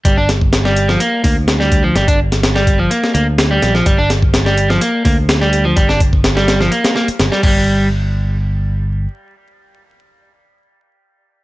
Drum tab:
CC |----------------|----------------|----------------|--------------x-|
HH |x-x-x-x-x-o-x-x-|xx-xx-x-x-x-x-x-|x-x-x-x-x-o-x-x-|x-x-x-x-xx-xx---|
SD |--o-oo-o----oo--|o--ooo---o--o-oo|--o-oo-o----oo--|-o--oooo-oo-oo--|
BD |o--o------o---o-|-o----o---------|o--o------o-----|o-oo----------o-|

CC |----------------|----------------|
HH |----------------|----------------|
SD |----------------|----------------|
BD |----------------|----------------|